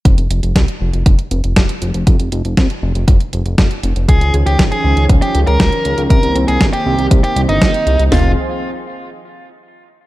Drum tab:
HH |xxxxxx-xxxxxxxxx|xxxxxx-xxxxxxxxx|xxxxxx-xxxxxxxxx|xxxxxx-xxxxxxxxx|
SD |----o-------o---|----o-------o---|----o-------o---|----o-------o---|
FT |----------------|----------------|----------------|----------------|
BD |o---o---o---o---|o---o---o---o---|o---o---o---o---|o---o---o---o---|

HH |----------------|
SD |o---------------|
FT |o---------------|
BD |----------------|